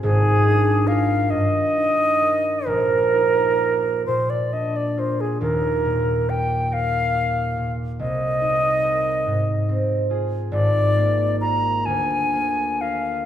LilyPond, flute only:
\new Staff \with { instrumentName = "Flute" } { \time 6/8 \key ees \major \tempo 4. = 46 aes'4 f''8 ees''4. | bes'4. c''16 d''16 ees''16 d''16 c''16 aes'16 | bes'4 g''8 f''4~ f''16 r16 | ees''2~ ees''8 r8 |
d''4 bes''8 aes''4 f''8 | }